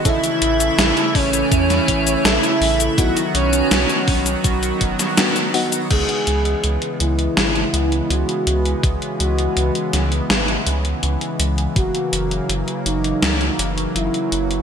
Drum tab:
CC |----------------|----------------|x---------------|----------------|
HH |xxxxxxoxxxxxxxox|xxxxxxoxxxxxxxox|xxxxxxxxxxxxxxxx|xxxxxxxxxxxxxxxx|
SH |xx-xxx-xxx-xxx-x|xx-xxx-xxx-xxx-x|----------------|----------------|
SD |----o----o--o---|----o------oo---|--------o-------|------o-o-------|
BD |o-----o-o-o-----|o-----o-o-o-----|o---------------|o---------------|

CC |----------------|
HH |xxxxxxxxxxxxxxxx|
SH |----------------|
SD |--------o-------|
BD |o---------------|